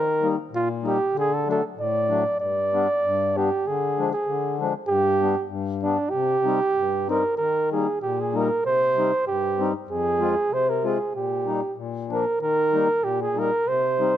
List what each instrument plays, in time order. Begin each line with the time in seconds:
Already playing: accordion D#3, flugelhorn A#4
0.22 accordion G3 A#3 D#4
0.51 accordion A#2, flugelhorn F4
0.83 accordion G3 A#3 D#4
0.87 flugelhorn G4
1.14 accordion D3
1.18 flugelhorn G#4
1.34 flugelhorn A4
1.47 accordion F#3 A3 D4, flugelhorn A4
1.77 accordion A2, flugelhorn D5
2.09 accordion F#3 A3 D4
2.38 accordion G2, flugelhorn D5
2.73 accordion G3 B3 D4
3.03 accordion G2
3.36 accordion G3 B3 D4, flugelhorn G4
3.66 accordion D3, flugelhorn G#4
3.98 accordion F3 G#3 D4
4.12 flugelhorn G#4
4.27 accordion D3
4.60 accordion F3 G#3 D4
4.87 accordion G2, flugelhorn G4
5.20 accordion G3 B3 D4
5.49 accordion G2
5.82 accordion G3 B3 D4, flugelhorn D4
6.10 accordion C3, flugelhorn G4
6.45 accordion G3 C4 D#4
6.75 accordion G2
7.08 accordion G3 C4 D#4, flugelhorn A#4
7.37 accordion D#3, flugelhorn A#4
7.72 accordion G3 A#3 D#4, flugelhorn G#4
8.02 accordion A#2, flugelhorn G4
8.20 flugelhorn G#4
8.34 accordion G3 A#3 D#4, flugelhorn A#4
8.64 accordion C3, flugelhorn C5
8.97 accordion G3 C4 D#4
9.26 accordion G2, flugelhorn G4
9.58 accordion G3 C4 D#4
9.87 accordion F2, flugelhorn G#4
10.19 accordion G#3 C4 F4
10.50 accordion C3, flugelhorn C5
10.69 flugelhorn A#4
10.83 accordion G#3 C4 F4, flugelhorn G#4
11.14 accordion A#2, flugelhorn G4
11.46 accordion G3 A#3 D#4
11.76 accordion A#2
12.10 accordion F3 A#3 D4, flugelhorn A#4
12.40 accordion D#3, flugelhorn A#4
12.73 accordion G3 A#3 D#4
13.02 accordion A#2, flugelhorn G4
13.22 flugelhorn G#4
13.36 accordion G3 A#3 D#4, flugelhorn A#4
13.66 accordion C3, flugelhorn C5
13.99 accordion G3 C4 D#4